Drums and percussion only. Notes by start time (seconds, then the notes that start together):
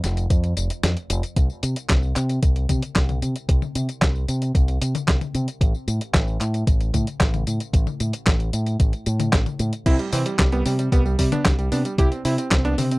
0.04 snare, closed hi-hat, tambourine
0.17 closed hi-hat, tambourine
0.30 kick, closed hi-hat, tambourine
0.44 closed hi-hat, tambourine
0.57 closed hi-hat, tambourine
0.70 closed hi-hat, tambourine
0.83 snare, closed hi-hat, tambourine
0.97 closed hi-hat, tambourine
1.10 closed hi-hat, tambourine
1.23 closed hi-hat, tambourine
1.36 kick, closed hi-hat, tambourine
1.50 tambourine
1.63 closed hi-hat, tambourine
1.76 closed hi-hat, tambourine
1.89 kick, snare, clap, closed hi-hat, tambourine
2.03 tambourine
2.16 clap, closed hi-hat, tambourine
2.29 closed hi-hat, tambourine
2.43 kick, closed hi-hat, tambourine
2.56 closed hi-hat, tambourine
2.69 kick, closed hi-hat, high tom, tambourine
2.82 closed hi-hat, tambourine
2.96 kick, snare, clap, closed hi-hat, tambourine
3.09 closed hi-hat, high tom, tambourine
3.22 closed hi-hat, tambourine
3.36 closed hi-hat, tambourine
3.49 kick, closed hi-hat, tambourine
3.62 high tom, tambourine
3.75 closed hi-hat, tambourine
3.89 closed hi-hat, tambourine
4.02 kick, snare, clap, closed hi-hat, tambourine
4.15 tambourine
4.28 closed hi-hat, tambourine
4.42 closed hi-hat, tambourine
4.55 kick, closed hi-hat, tambourine
4.68 closed hi-hat, tambourine
4.82 closed hi-hat, tambourine
4.95 closed hi-hat, high tom, tambourine
5.08 kick, snare, clap, closed hi-hat, tambourine
5.21 closed hi-hat, high tom, tambourine
5.35 closed hi-hat, tambourine
5.48 closed hi-hat, tambourine
5.61 kick, closed hi-hat, tambourine
5.75 tambourine
5.88 closed hi-hat, tambourine
6.01 closed hi-hat, tambourine
6.14 kick, snare, clap, closed hi-hat, tambourine
6.28 tambourine
6.41 clap, closed hi-hat, tambourine
6.54 closed hi-hat, tambourine
6.67 kick, closed hi-hat, tambourine
6.81 closed hi-hat, tambourine
6.94 kick, closed hi-hat, high tom, tambourine
7.07 closed hi-hat, tambourine
7.20 kick, snare, clap, closed hi-hat, tambourine
7.34 closed hi-hat, high tom, tambourine
7.47 closed hi-hat, tambourine
7.60 closed hi-hat, tambourine
7.73 kick, closed hi-hat, tambourine
7.87 high tom, tambourine
8.00 closed hi-hat, tambourine
8.13 closed hi-hat, tambourine
8.27 kick, snare, clap, closed hi-hat, tambourine
8.40 closed hi-hat, tambourine
8.53 closed hi-hat, tambourine
8.66 closed hi-hat, tambourine
8.80 kick, closed hi-hat, tambourine
8.93 closed hi-hat, tambourine
9.06 closed hi-hat, tambourine
9.20 closed hi-hat, high tom, tambourine
9.33 kick, snare, clap, closed hi-hat, tambourine
9.46 closed hi-hat, high tom, tambourine
9.59 closed hi-hat, tambourine
9.73 closed hi-hat, tambourine
9.86 kick, closed hi-hat, tambourine, crash
9.99 closed hi-hat, tambourine
10.13 open hi-hat, tambourine
10.26 closed hi-hat, tambourine
10.39 kick, snare, clap, closed hi-hat, tambourine
10.52 closed hi-hat, tambourine
10.66 open hi-hat, tambourine
10.79 closed hi-hat, tambourine
10.92 kick, closed hi-hat, tambourine
11.06 tambourine
11.19 kick, open hi-hat, tambourine
11.32 closed hi-hat, high tom, tambourine
11.45 kick, snare, clap, closed hi-hat, tambourine
11.59 closed hi-hat, tambourine
11.72 open hi-hat, tambourine
11.85 closed hi-hat, tambourine
11.98 kick, closed hi-hat, tambourine
12.12 closed hi-hat, tambourine
12.25 open hi-hat, tambourine
12.38 closed hi-hat, tambourine
12.51 kick, snare, clap, closed hi-hat, tambourine
12.65 closed hi-hat, tambourine
12.78 open hi-hat, high tom, tambourine
12.91 closed hi-hat, tambourine